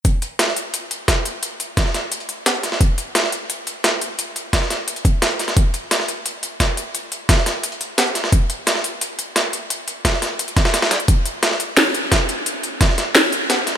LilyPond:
\new DrumStaff \with { instrumentName = "Drums" } \drummode { \time 4/4 \tempo 4 = 174 <hh bd>8 hh8 <hh sn>16 sn16 hh8 hh8 hh8 <hh bd sn>8 hh8 | hh8 hh8 <hh bd sn>16 sn16 <hh sn>8 hh16 hh16 hh8 <hh sn>16 hh16 <hh sn>16 sn16 | <hh bd>8 hh8 <hh sn>16 sn16 hh8 hh8 hh8 <hh sn>8 hh8 | hh8 hh8 <hh bd sn>16 sn16 <hh sn>8 hh16 hh16 <hh bd>8 <hh sn>16 hh16 <hh sn>16 <hh sn>16 |
<hh bd>8 hh8 <hh sn>16 sn16 hh8 hh8 hh8 <hh bd sn>8 hh8 | hh8 hh8 <hh bd sn>16 sn16 <hh sn>8 hh16 hh16 hh8 <hh sn>16 hh16 <hh sn>16 sn16 | <hh bd>8 hh8 <hh sn>16 sn16 hh8 hh8 hh8 <hh sn>8 hh8 | hh8 hh8 <hh bd sn>16 sn16 <hh sn>8 hh16 hh16 <hh bd sn>16 <hh sn>16 <hh sn>16 <hh sn>16 <hh sn>16 hh16 |
<hh bd>8 hh8 <hh sn>16 sn16 hh8 <hh sn>8 hh8 <hh bd sn>8 hh8 | hh8 hh8 <hh bd sn>16 sn16 <hh sn>8 <hh sn>16 hh16 hh8 <hh sn>16 hh16 <hh sn>8 | }